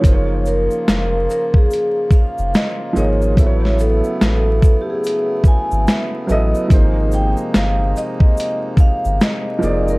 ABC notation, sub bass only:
X:1
M:4/4
L:1/16
Q:"Swing 16ths" 1/4=72
K:F#
V:1 name="Sub bass" clef=bass
F,,,3 z E,,,2 z4 z E,,, z2 G,,,2 | =A,,,3 z A,,,2 z4 z G,,, z2 A,,, z | G,,,3 z =G,,,2 z4 z G,,, z2 E,,,2 |]